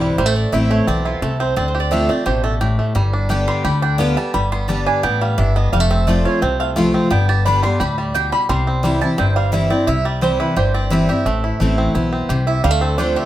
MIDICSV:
0, 0, Header, 1, 5, 480
1, 0, Start_track
1, 0, Key_signature, 0, "major"
1, 0, Tempo, 346021
1, 257, Time_signature, 4, 2, 24, 8
1, 18385, End_track
2, 0, Start_track
2, 0, Title_t, "Mandolin"
2, 0, Program_c, 0, 25
2, 17, Note_on_c, 0, 71, 84
2, 246, Note_off_c, 0, 71, 0
2, 253, Note_on_c, 0, 72, 84
2, 495, Note_off_c, 0, 72, 0
2, 500, Note_on_c, 0, 74, 87
2, 728, Note_off_c, 0, 74, 0
2, 734, Note_on_c, 0, 76, 94
2, 976, Note_off_c, 0, 76, 0
2, 981, Note_on_c, 0, 73, 94
2, 1208, Note_off_c, 0, 73, 0
2, 1217, Note_on_c, 0, 74, 91
2, 1458, Note_off_c, 0, 74, 0
2, 1465, Note_on_c, 0, 65, 70
2, 1691, Note_off_c, 0, 65, 0
2, 1698, Note_on_c, 0, 69, 73
2, 1938, Note_off_c, 0, 69, 0
2, 1944, Note_on_c, 0, 72, 99
2, 2170, Note_off_c, 0, 72, 0
2, 2178, Note_on_c, 0, 74, 101
2, 2326, Note_off_c, 0, 74, 0
2, 2331, Note_on_c, 0, 72, 78
2, 2489, Note_off_c, 0, 72, 0
2, 2494, Note_on_c, 0, 74, 88
2, 2652, Note_off_c, 0, 74, 0
2, 2658, Note_on_c, 0, 76, 92
2, 2899, Note_off_c, 0, 76, 0
2, 2901, Note_on_c, 0, 74, 90
2, 3125, Note_off_c, 0, 74, 0
2, 3130, Note_on_c, 0, 72, 79
2, 3374, Note_off_c, 0, 72, 0
2, 3380, Note_on_c, 0, 69, 99
2, 3522, Note_off_c, 0, 69, 0
2, 4822, Note_on_c, 0, 84, 106
2, 5052, Note_off_c, 0, 84, 0
2, 5063, Note_on_c, 0, 83, 85
2, 5300, Note_off_c, 0, 83, 0
2, 5306, Note_on_c, 0, 79, 99
2, 5534, Note_off_c, 0, 79, 0
2, 5541, Note_on_c, 0, 77, 90
2, 5783, Note_off_c, 0, 77, 0
2, 5786, Note_on_c, 0, 81, 102
2, 6013, Note_off_c, 0, 81, 0
2, 6018, Note_on_c, 0, 83, 97
2, 6262, Note_off_c, 0, 83, 0
2, 6271, Note_on_c, 0, 84, 105
2, 6494, Note_off_c, 0, 84, 0
2, 6499, Note_on_c, 0, 81, 89
2, 6742, Note_off_c, 0, 81, 0
2, 6748, Note_on_c, 0, 80, 100
2, 6975, Note_off_c, 0, 80, 0
2, 6980, Note_on_c, 0, 79, 84
2, 7224, Note_off_c, 0, 79, 0
2, 7234, Note_on_c, 0, 77, 98
2, 7459, Note_off_c, 0, 77, 0
2, 7462, Note_on_c, 0, 76, 92
2, 7705, Note_off_c, 0, 76, 0
2, 7711, Note_on_c, 0, 75, 93
2, 7938, Note_off_c, 0, 75, 0
2, 7944, Note_on_c, 0, 77, 99
2, 8186, Note_off_c, 0, 77, 0
2, 8192, Note_on_c, 0, 76, 102
2, 8419, Note_off_c, 0, 76, 0
2, 8428, Note_on_c, 0, 74, 89
2, 8668, Note_off_c, 0, 74, 0
2, 8675, Note_on_c, 0, 73, 92
2, 8897, Note_off_c, 0, 73, 0
2, 8902, Note_on_c, 0, 72, 77
2, 9145, Note_off_c, 0, 72, 0
2, 9156, Note_on_c, 0, 77, 100
2, 9295, Note_off_c, 0, 77, 0
2, 9865, Note_on_c, 0, 79, 99
2, 10105, Note_off_c, 0, 79, 0
2, 10111, Note_on_c, 0, 81, 100
2, 10338, Note_off_c, 0, 81, 0
2, 10345, Note_on_c, 0, 83, 102
2, 10585, Note_off_c, 0, 83, 0
2, 10590, Note_on_c, 0, 84, 113
2, 10818, Note_off_c, 0, 84, 0
2, 10827, Note_on_c, 0, 83, 94
2, 11067, Note_off_c, 0, 83, 0
2, 11073, Note_on_c, 0, 74, 75
2, 11298, Note_on_c, 0, 79, 96
2, 11299, Note_off_c, 0, 74, 0
2, 11541, Note_off_c, 0, 79, 0
2, 11546, Note_on_c, 0, 83, 105
2, 11775, Note_off_c, 0, 83, 0
2, 11780, Note_on_c, 0, 84, 115
2, 12459, Note_off_c, 0, 84, 0
2, 12506, Note_on_c, 0, 81, 108
2, 12732, Note_off_c, 0, 81, 0
2, 12737, Note_on_c, 0, 79, 85
2, 12978, Note_off_c, 0, 79, 0
2, 12984, Note_on_c, 0, 77, 96
2, 13212, Note_off_c, 0, 77, 0
2, 13218, Note_on_c, 0, 76, 90
2, 13460, Note_off_c, 0, 76, 0
2, 13460, Note_on_c, 0, 74, 96
2, 13690, Note_off_c, 0, 74, 0
2, 13696, Note_on_c, 0, 76, 113
2, 13939, Note_off_c, 0, 76, 0
2, 13946, Note_on_c, 0, 74, 86
2, 14173, Note_off_c, 0, 74, 0
2, 14181, Note_on_c, 0, 72, 92
2, 14421, Note_off_c, 0, 72, 0
2, 14427, Note_on_c, 0, 71, 92
2, 14651, Note_off_c, 0, 71, 0
2, 14657, Note_on_c, 0, 72, 88
2, 14899, Note_off_c, 0, 72, 0
2, 14905, Note_on_c, 0, 74, 96
2, 15132, Note_off_c, 0, 74, 0
2, 15142, Note_on_c, 0, 76, 92
2, 15374, Note_off_c, 0, 76, 0
2, 15390, Note_on_c, 0, 76, 91
2, 16524, Note_off_c, 0, 76, 0
2, 17302, Note_on_c, 0, 76, 101
2, 17528, Note_off_c, 0, 76, 0
2, 17535, Note_on_c, 0, 77, 109
2, 17775, Note_off_c, 0, 77, 0
2, 17780, Note_on_c, 0, 69, 75
2, 18007, Note_off_c, 0, 69, 0
2, 18015, Note_on_c, 0, 72, 98
2, 18255, Note_off_c, 0, 72, 0
2, 18261, Note_on_c, 0, 76, 98
2, 18385, Note_off_c, 0, 76, 0
2, 18385, End_track
3, 0, Start_track
3, 0, Title_t, "Five-string banjo"
3, 0, Program_c, 1, 105
3, 0, Note_on_c, 1, 60, 55
3, 0, Note_on_c, 1, 64, 60
3, 19, Note_on_c, 1, 55, 58
3, 212, Note_off_c, 1, 64, 0
3, 238, Note_off_c, 1, 55, 0
3, 254, Note_on_c, 1, 55, 82
3, 357, Note_off_c, 1, 55, 0
3, 357, Note_on_c, 1, 57, 77
3, 733, Note_on_c, 1, 64, 64
3, 737, Note_off_c, 1, 57, 0
3, 981, Note_on_c, 1, 57, 72
3, 1207, Note_off_c, 1, 60, 0
3, 1212, Note_on_c, 1, 60, 66
3, 1414, Note_off_c, 1, 64, 0
3, 1461, Note_on_c, 1, 64, 60
3, 1650, Note_off_c, 1, 57, 0
3, 1696, Note_on_c, 1, 57, 64
3, 1894, Note_off_c, 1, 60, 0
3, 1943, Note_on_c, 1, 60, 59
3, 2130, Note_off_c, 1, 64, 0
3, 2160, Note_off_c, 1, 60, 0
3, 2176, Note_on_c, 1, 60, 66
3, 2177, Note_off_c, 1, 57, 0
3, 2423, Note_on_c, 1, 67, 59
3, 2657, Note_on_c, 1, 62, 65
3, 2857, Note_off_c, 1, 60, 0
3, 2907, Note_on_c, 1, 57, 71
3, 3091, Note_off_c, 1, 67, 0
3, 3140, Note_on_c, 1, 67, 67
3, 3368, Note_off_c, 1, 57, 0
3, 3384, Note_on_c, 1, 57, 60
3, 3602, Note_off_c, 1, 67, 0
3, 3619, Note_on_c, 1, 67, 57
3, 3852, Note_off_c, 1, 57, 0
3, 3868, Note_on_c, 1, 57, 58
3, 4095, Note_off_c, 1, 57, 0
3, 4100, Note_off_c, 1, 67, 0
3, 4101, Note_on_c, 1, 55, 79
3, 4343, Note_off_c, 1, 62, 0
3, 4348, Note_on_c, 1, 62, 60
3, 4579, Note_on_c, 1, 67, 65
3, 4821, Note_off_c, 1, 55, 0
3, 4826, Note_on_c, 1, 55, 75
3, 5040, Note_off_c, 1, 67, 0
3, 5056, Note_on_c, 1, 67, 69
3, 5298, Note_off_c, 1, 62, 0
3, 5303, Note_on_c, 1, 62, 59
3, 5495, Note_off_c, 1, 55, 0
3, 5534, Note_on_c, 1, 59, 59
3, 5739, Note_off_c, 1, 67, 0
3, 5787, Note_on_c, 1, 55, 55
3, 5974, Note_off_c, 1, 62, 0
3, 6004, Note_off_c, 1, 55, 0
3, 6020, Note_on_c, 1, 55, 78
3, 6218, Note_off_c, 1, 59, 0
3, 6273, Note_on_c, 1, 59, 61
3, 6489, Note_off_c, 1, 55, 0
3, 6506, Note_on_c, 1, 55, 62
3, 6749, Note_on_c, 1, 62, 61
3, 6939, Note_off_c, 1, 59, 0
3, 6985, Note_on_c, 1, 59, 73
3, 7185, Note_off_c, 1, 55, 0
3, 7233, Note_on_c, 1, 55, 59
3, 7418, Note_off_c, 1, 62, 0
3, 7461, Note_on_c, 1, 62, 58
3, 7664, Note_off_c, 1, 59, 0
3, 7712, Note_on_c, 1, 59, 58
3, 7900, Note_off_c, 1, 55, 0
3, 7944, Note_off_c, 1, 62, 0
3, 7946, Note_off_c, 1, 59, 0
3, 7947, Note_on_c, 1, 55, 76
3, 8046, Note_off_c, 1, 55, 0
3, 8046, Note_on_c, 1, 57, 79
3, 8196, Note_on_c, 1, 60, 62
3, 8411, Note_off_c, 1, 57, 0
3, 8428, Note_on_c, 1, 57, 63
3, 8673, Note_on_c, 1, 65, 57
3, 8862, Note_off_c, 1, 60, 0
3, 8908, Note_on_c, 1, 60, 67
3, 9106, Note_off_c, 1, 57, 0
3, 9153, Note_on_c, 1, 57, 61
3, 9340, Note_off_c, 1, 65, 0
3, 9381, Note_on_c, 1, 65, 58
3, 9586, Note_off_c, 1, 60, 0
3, 9631, Note_on_c, 1, 60, 60
3, 9820, Note_off_c, 1, 57, 0
3, 9856, Note_off_c, 1, 60, 0
3, 9862, Note_on_c, 1, 59, 73
3, 9865, Note_off_c, 1, 65, 0
3, 10111, Note_on_c, 1, 67, 62
3, 10341, Note_on_c, 1, 62, 67
3, 10542, Note_off_c, 1, 59, 0
3, 10582, Note_on_c, 1, 55, 76
3, 10813, Note_off_c, 1, 67, 0
3, 10818, Note_on_c, 1, 67, 71
3, 11022, Note_off_c, 1, 62, 0
3, 11064, Note_off_c, 1, 55, 0
3, 11070, Note_on_c, 1, 55, 61
3, 11299, Note_off_c, 1, 67, 0
3, 11305, Note_on_c, 1, 67, 57
3, 11544, Note_off_c, 1, 55, 0
3, 11550, Note_on_c, 1, 55, 61
3, 11777, Note_off_c, 1, 55, 0
3, 11782, Note_on_c, 1, 55, 81
3, 12030, Note_on_c, 1, 60, 63
3, 12243, Note_off_c, 1, 55, 0
3, 12259, Note_on_c, 1, 55, 68
3, 12507, Note_on_c, 1, 64, 61
3, 12697, Note_off_c, 1, 60, 0
3, 12738, Note_on_c, 1, 60, 67
3, 12939, Note_off_c, 1, 55, 0
3, 12985, Note_on_c, 1, 55, 59
3, 13174, Note_off_c, 1, 64, 0
3, 13218, Note_on_c, 1, 64, 59
3, 13247, Note_off_c, 1, 67, 0
3, 13418, Note_off_c, 1, 60, 0
3, 13465, Note_on_c, 1, 60, 59
3, 13653, Note_off_c, 1, 55, 0
3, 13678, Note_off_c, 1, 64, 0
3, 13695, Note_on_c, 1, 64, 68
3, 13700, Note_off_c, 1, 60, 0
3, 13945, Note_on_c, 1, 55, 59
3, 14180, Note_on_c, 1, 60, 65
3, 14419, Note_off_c, 1, 64, 0
3, 14424, Note_on_c, 1, 64, 61
3, 14612, Note_off_c, 1, 55, 0
3, 14662, Note_on_c, 1, 67, 71
3, 14899, Note_off_c, 1, 60, 0
3, 14904, Note_on_c, 1, 60, 56
3, 15091, Note_off_c, 1, 64, 0
3, 15138, Note_on_c, 1, 64, 53
3, 15339, Note_off_c, 1, 67, 0
3, 15384, Note_on_c, 1, 67, 60
3, 15618, Note_off_c, 1, 64, 0
3, 15618, Note_off_c, 1, 67, 0
3, 15618, Note_on_c, 1, 57, 78
3, 15867, Note_on_c, 1, 64, 63
3, 16089, Note_off_c, 1, 57, 0
3, 16094, Note_on_c, 1, 57, 62
3, 16336, Note_off_c, 1, 60, 0
3, 16342, Note_on_c, 1, 60, 56
3, 16532, Note_off_c, 1, 64, 0
3, 16574, Note_on_c, 1, 64, 64
3, 16774, Note_off_c, 1, 57, 0
3, 16804, Note_off_c, 1, 60, 0
3, 16821, Note_on_c, 1, 60, 61
3, 17051, Note_on_c, 1, 67, 59
3, 17253, Note_off_c, 1, 64, 0
3, 17297, Note_on_c, 1, 64, 58
3, 17488, Note_off_c, 1, 60, 0
3, 17532, Note_on_c, 1, 55, 76
3, 17533, Note_off_c, 1, 64, 0
3, 17533, Note_off_c, 1, 67, 0
3, 17626, Note_off_c, 1, 55, 0
3, 17626, Note_on_c, 1, 57, 83
3, 17773, Note_on_c, 1, 60, 61
3, 18005, Note_on_c, 1, 62, 68
3, 18011, Note_off_c, 1, 57, 0
3, 18260, Note_on_c, 1, 67, 58
3, 18385, Note_off_c, 1, 60, 0
3, 18385, Note_off_c, 1, 62, 0
3, 18385, Note_off_c, 1, 67, 0
3, 18385, End_track
4, 0, Start_track
4, 0, Title_t, "Steel-string acoustic guitar"
4, 0, Program_c, 2, 25
4, 0, Note_on_c, 2, 43, 92
4, 0, Note_on_c, 2, 52, 92
4, 0, Note_on_c, 2, 55, 93
4, 0, Note_on_c, 2, 60, 100
4, 0, Note_on_c, 2, 64, 103
4, 209, Note_off_c, 2, 43, 0
4, 226, Note_off_c, 2, 52, 0
4, 232, Note_off_c, 2, 55, 0
4, 237, Note_off_c, 2, 60, 0
4, 242, Note_off_c, 2, 64, 0
4, 254, Note_on_c, 2, 45, 88
4, 727, Note_on_c, 2, 52, 83
4, 736, Note_on_c, 2, 57, 89
4, 750, Note_on_c, 2, 60, 100
4, 759, Note_on_c, 2, 64, 89
4, 1170, Note_off_c, 2, 45, 0
4, 1189, Note_off_c, 2, 52, 0
4, 1194, Note_off_c, 2, 57, 0
4, 1200, Note_off_c, 2, 60, 0
4, 1205, Note_off_c, 2, 64, 0
4, 1224, Note_on_c, 2, 59, 89
4, 1678, Note_off_c, 2, 59, 0
4, 1697, Note_on_c, 2, 48, 90
4, 2155, Note_off_c, 2, 48, 0
4, 2170, Note_on_c, 2, 50, 87
4, 2631, Note_off_c, 2, 50, 0
4, 2647, Note_on_c, 2, 50, 83
4, 2662, Note_on_c, 2, 57, 84
4, 2672, Note_on_c, 2, 60, 87
4, 2680, Note_on_c, 2, 65, 97
4, 2880, Note_off_c, 2, 65, 0
4, 2891, Note_off_c, 2, 50, 0
4, 2896, Note_on_c, 2, 65, 64
4, 2899, Note_off_c, 2, 57, 0
4, 2904, Note_off_c, 2, 60, 0
4, 2926, Note_on_c, 2, 60, 53
4, 3125, Note_off_c, 2, 65, 0
4, 3131, Note_on_c, 2, 47, 83
4, 3140, Note_off_c, 2, 60, 0
4, 3593, Note_off_c, 2, 47, 0
4, 3619, Note_on_c, 2, 45, 96
4, 4078, Note_off_c, 2, 45, 0
4, 4090, Note_on_c, 2, 43, 86
4, 4564, Note_on_c, 2, 50, 93
4, 4573, Note_on_c, 2, 55, 91
4, 4586, Note_on_c, 2, 59, 88
4, 4596, Note_on_c, 2, 67, 102
4, 5011, Note_off_c, 2, 43, 0
4, 5031, Note_off_c, 2, 50, 0
4, 5035, Note_off_c, 2, 55, 0
4, 5042, Note_off_c, 2, 59, 0
4, 5047, Note_off_c, 2, 67, 0
4, 5059, Note_on_c, 2, 50, 87
4, 5507, Note_off_c, 2, 50, 0
4, 5523, Note_on_c, 2, 50, 91
4, 5535, Note_on_c, 2, 55, 88
4, 5549, Note_on_c, 2, 59, 99
4, 5553, Note_on_c, 2, 67, 109
4, 5765, Note_off_c, 2, 67, 0
4, 5772, Note_off_c, 2, 50, 0
4, 5778, Note_off_c, 2, 55, 0
4, 5782, Note_on_c, 2, 67, 57
4, 5784, Note_off_c, 2, 59, 0
4, 5812, Note_on_c, 2, 59, 47
4, 6010, Note_off_c, 2, 67, 0
4, 6021, Note_on_c, 2, 43, 91
4, 6025, Note_off_c, 2, 59, 0
4, 6490, Note_on_c, 2, 50, 75
4, 6504, Note_on_c, 2, 55, 91
4, 6514, Note_on_c, 2, 59, 89
4, 6521, Note_on_c, 2, 67, 101
4, 6938, Note_off_c, 2, 43, 0
4, 6955, Note_off_c, 2, 50, 0
4, 6962, Note_off_c, 2, 55, 0
4, 6967, Note_off_c, 2, 59, 0
4, 6971, Note_off_c, 2, 67, 0
4, 6982, Note_on_c, 2, 45, 90
4, 7441, Note_off_c, 2, 45, 0
4, 7460, Note_on_c, 2, 43, 94
4, 7920, Note_off_c, 2, 43, 0
4, 7952, Note_on_c, 2, 41, 85
4, 8419, Note_on_c, 2, 53, 75
4, 8431, Note_on_c, 2, 57, 88
4, 8440, Note_on_c, 2, 60, 97
4, 8449, Note_on_c, 2, 65, 99
4, 8864, Note_off_c, 2, 41, 0
4, 8880, Note_off_c, 2, 53, 0
4, 8886, Note_off_c, 2, 57, 0
4, 8891, Note_off_c, 2, 60, 0
4, 8895, Note_off_c, 2, 65, 0
4, 8909, Note_on_c, 2, 48, 86
4, 9375, Note_on_c, 2, 53, 92
4, 9389, Note_on_c, 2, 57, 103
4, 9397, Note_on_c, 2, 60, 101
4, 9407, Note_on_c, 2, 65, 109
4, 9822, Note_off_c, 2, 48, 0
4, 9838, Note_off_c, 2, 53, 0
4, 9845, Note_off_c, 2, 57, 0
4, 9849, Note_off_c, 2, 60, 0
4, 9854, Note_off_c, 2, 65, 0
4, 9856, Note_on_c, 2, 43, 87
4, 10344, Note_on_c, 2, 50, 80
4, 10352, Note_on_c, 2, 55, 87
4, 10366, Note_on_c, 2, 59, 84
4, 10375, Note_on_c, 2, 67, 101
4, 10574, Note_off_c, 2, 67, 0
4, 10583, Note_off_c, 2, 50, 0
4, 10587, Note_off_c, 2, 55, 0
4, 10591, Note_on_c, 2, 67, 67
4, 10594, Note_off_c, 2, 59, 0
4, 10626, Note_on_c, 2, 59, 50
4, 10775, Note_off_c, 2, 43, 0
4, 10816, Note_off_c, 2, 67, 0
4, 10832, Note_on_c, 2, 45, 85
4, 10833, Note_off_c, 2, 59, 0
4, 11286, Note_off_c, 2, 45, 0
4, 11309, Note_on_c, 2, 47, 97
4, 11764, Note_off_c, 2, 47, 0
4, 11785, Note_on_c, 2, 48, 88
4, 12249, Note_on_c, 2, 52, 91
4, 12266, Note_on_c, 2, 55, 88
4, 12276, Note_on_c, 2, 60, 99
4, 12283, Note_on_c, 2, 64, 91
4, 12485, Note_off_c, 2, 64, 0
4, 12494, Note_off_c, 2, 52, 0
4, 12502, Note_on_c, 2, 64, 61
4, 12503, Note_off_c, 2, 55, 0
4, 12508, Note_off_c, 2, 60, 0
4, 12533, Note_on_c, 2, 60, 54
4, 12697, Note_off_c, 2, 48, 0
4, 12730, Note_off_c, 2, 64, 0
4, 12735, Note_on_c, 2, 43, 90
4, 12745, Note_off_c, 2, 60, 0
4, 13204, Note_on_c, 2, 52, 85
4, 13214, Note_on_c, 2, 55, 91
4, 13227, Note_on_c, 2, 60, 99
4, 13234, Note_on_c, 2, 64, 103
4, 13442, Note_off_c, 2, 64, 0
4, 13451, Note_off_c, 2, 52, 0
4, 13456, Note_off_c, 2, 55, 0
4, 13459, Note_on_c, 2, 64, 62
4, 13462, Note_off_c, 2, 60, 0
4, 13489, Note_on_c, 2, 60, 51
4, 13652, Note_off_c, 2, 43, 0
4, 13688, Note_off_c, 2, 64, 0
4, 13701, Note_on_c, 2, 48, 86
4, 13703, Note_off_c, 2, 60, 0
4, 14168, Note_on_c, 2, 52, 83
4, 14178, Note_on_c, 2, 55, 82
4, 14190, Note_on_c, 2, 60, 85
4, 14200, Note_on_c, 2, 64, 105
4, 14614, Note_off_c, 2, 48, 0
4, 14631, Note_off_c, 2, 52, 0
4, 14636, Note_off_c, 2, 55, 0
4, 14642, Note_off_c, 2, 60, 0
4, 14647, Note_off_c, 2, 64, 0
4, 14655, Note_on_c, 2, 43, 90
4, 15126, Note_on_c, 2, 52, 103
4, 15141, Note_on_c, 2, 55, 92
4, 15151, Note_on_c, 2, 60, 102
4, 15162, Note_on_c, 2, 64, 111
4, 15362, Note_off_c, 2, 64, 0
4, 15370, Note_off_c, 2, 52, 0
4, 15378, Note_off_c, 2, 55, 0
4, 15378, Note_on_c, 2, 64, 67
4, 15383, Note_off_c, 2, 60, 0
4, 15413, Note_on_c, 2, 60, 51
4, 15570, Note_off_c, 2, 43, 0
4, 15606, Note_off_c, 2, 64, 0
4, 15623, Note_off_c, 2, 60, 0
4, 16091, Note_on_c, 2, 52, 76
4, 16108, Note_on_c, 2, 57, 87
4, 16117, Note_on_c, 2, 60, 88
4, 16124, Note_on_c, 2, 64, 92
4, 16551, Note_off_c, 2, 52, 0
4, 16559, Note_off_c, 2, 57, 0
4, 16564, Note_off_c, 2, 60, 0
4, 16567, Note_off_c, 2, 64, 0
4, 16579, Note_on_c, 2, 59, 82
4, 17035, Note_off_c, 2, 59, 0
4, 17062, Note_on_c, 2, 48, 98
4, 17515, Note_off_c, 2, 48, 0
4, 17535, Note_on_c, 2, 50, 90
4, 17991, Note_off_c, 2, 50, 0
4, 18008, Note_on_c, 2, 50, 82
4, 18022, Note_on_c, 2, 57, 89
4, 18029, Note_on_c, 2, 60, 87
4, 18038, Note_on_c, 2, 65, 95
4, 18385, Note_off_c, 2, 50, 0
4, 18385, Note_off_c, 2, 57, 0
4, 18385, Note_off_c, 2, 60, 0
4, 18385, Note_off_c, 2, 65, 0
4, 18385, End_track
5, 0, Start_track
5, 0, Title_t, "Upright bass"
5, 0, Program_c, 3, 32
5, 0, Note_on_c, 3, 35, 86
5, 181, Note_off_c, 3, 35, 0
5, 253, Note_on_c, 3, 33, 89
5, 607, Note_off_c, 3, 33, 0
5, 735, Note_on_c, 3, 33, 86
5, 1144, Note_off_c, 3, 33, 0
5, 1216, Note_on_c, 3, 35, 80
5, 1625, Note_off_c, 3, 35, 0
5, 1694, Note_on_c, 3, 36, 83
5, 2104, Note_off_c, 3, 36, 0
5, 2178, Note_on_c, 3, 38, 90
5, 2884, Note_off_c, 3, 38, 0
5, 3141, Note_on_c, 3, 33, 83
5, 3846, Note_off_c, 3, 33, 0
5, 4103, Note_on_c, 3, 31, 93
5, 4808, Note_off_c, 3, 31, 0
5, 5059, Note_on_c, 3, 38, 87
5, 5766, Note_off_c, 3, 38, 0
5, 6024, Note_on_c, 3, 31, 90
5, 6730, Note_off_c, 3, 31, 0
5, 6986, Note_on_c, 3, 33, 85
5, 7395, Note_off_c, 3, 33, 0
5, 7468, Note_on_c, 3, 31, 91
5, 7876, Note_off_c, 3, 31, 0
5, 7943, Note_on_c, 3, 29, 96
5, 8649, Note_off_c, 3, 29, 0
5, 8909, Note_on_c, 3, 36, 89
5, 9613, Note_off_c, 3, 36, 0
5, 9870, Note_on_c, 3, 31, 90
5, 10573, Note_off_c, 3, 31, 0
5, 10826, Note_on_c, 3, 38, 87
5, 11530, Note_off_c, 3, 38, 0
5, 11783, Note_on_c, 3, 36, 96
5, 12487, Note_off_c, 3, 36, 0
5, 12746, Note_on_c, 3, 31, 85
5, 13448, Note_off_c, 3, 31, 0
5, 13698, Note_on_c, 3, 36, 94
5, 14403, Note_off_c, 3, 36, 0
5, 14656, Note_on_c, 3, 31, 82
5, 15361, Note_off_c, 3, 31, 0
5, 15613, Note_on_c, 3, 33, 91
5, 15967, Note_off_c, 3, 33, 0
5, 16099, Note_on_c, 3, 33, 89
5, 16506, Note_off_c, 3, 33, 0
5, 16576, Note_on_c, 3, 35, 88
5, 16984, Note_off_c, 3, 35, 0
5, 17056, Note_on_c, 3, 36, 87
5, 17464, Note_off_c, 3, 36, 0
5, 17537, Note_on_c, 3, 38, 97
5, 18240, Note_off_c, 3, 38, 0
5, 18385, End_track
0, 0, End_of_file